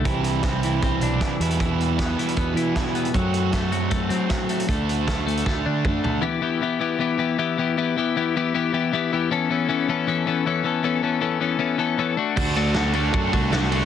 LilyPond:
<<
  \new Staff \with { instrumentName = "Clean electric guitar" } { \time 4/4 \key e \minor \tempo 4 = 156 e4 c'8 e8 c'8 d'8 e8 e8 | e4 b8 e8 b8 e'8 e8 b8 | fis4 a8 fis8 a8 c'8 fis8 a8 | a4 a8 a8 a8 d'8 a8 a8 |
<e b e' g'>8 <e b e' g'>8 <e b e' g'>8 <e b e' g'>8 <e b e' g'>8 <e b e' g'>8 <e b e' g'>8 <e b e' g'>8 | <e b e' g'>8 <e b e' g'>8 <e b e' g'>8 <e b e' g'>8 <e b e' g'>8 <e b e' g'>8 <e b e' g'>8 <e b e' g'>8 | <e b cis' a'>8 <e b cis' a'>8 <e b cis' a'>8 <e b cis' a'>8 <e b cis' a'>8 <e b cis' a'>8 <e b cis' a'>8 <e b cis' a'>8 | <e b cis' a'>8 <e b cis' a'>8 <e b cis' a'>8 <e b cis' a'>8 <e b cis' a'>8 <e b cis' a'>8 <e b cis' a'>8 <a d' fis'>8 |
<a d' fis'>8 <a d' fis'>8 <a d' fis'>8 <a d' fis'>8 <a d' fis'>8 <a d' fis'>8 <a d' fis'>8 <a d' fis'>8 | }
  \new Staff \with { instrumentName = "Distorted electric guitar" } { \time 4/4 \key e \minor <c e g c' e'>2.~ <c e g c' e'>8 <e, b, e g b e'>8~ | <e, b, e g b e'>1 | <fis a c' fis'>1 | <d a d' fis'>1 |
r1 | r1 | r1 | r1 |
<d a d' fis'>8 <d a d' fis'>8 <d a d' fis'>8 <d a d' fis'>8 <d a d' fis'>8 <d a d' fis'>8 <d a d' fis'>8 <d a d' fis'>8 | }
  \new Staff \with { instrumentName = "Picked electric bass" } { \clef bass \time 4/4 \key e \minor c,2 c,8 b,,8 r8 e,8~ | e,4. r8 e,8 e8 r4 | fis,2 fis,8 fis8 r4 | d,2 d,8 d8 r4 |
r1 | r1 | r1 | r1 |
d,2 fis,8 c,4. | }
  \new DrumStaff \with { instrumentName = "Drums" } \drummode { \time 4/4 <hh bd>8 hh8 <hh bd sn>8 hh8 <hh bd>8 hh8 <hh bd sn>8 hh16 hh16 | <hh bd>8 hh8 <hh bd sn>8 hh16 hh16 <hh bd>8 hh8 <hh bd sn>16 sn16 hh16 hh16 | <hh bd>8 hh8 <hh bd sn>8 hh8 <hh bd>8 hh8 <hh bd sn>8 hh16 hh16 | <hh bd>8 hh8 <hh bd sn>8 hh16 hh16 <bd sn>4 <bd toml>8 tomfh8 |
r4 r4 r4 r4 | r4 r4 r4 r4 | r4 r4 r4 r4 | r4 r4 r4 r4 |
<cymc bd>8 cymr8 <cymr sn>8 cymr8 <bd cymr>8 <bd cymr>8 <cymr sn>16 sn16 cymr8 | }
>>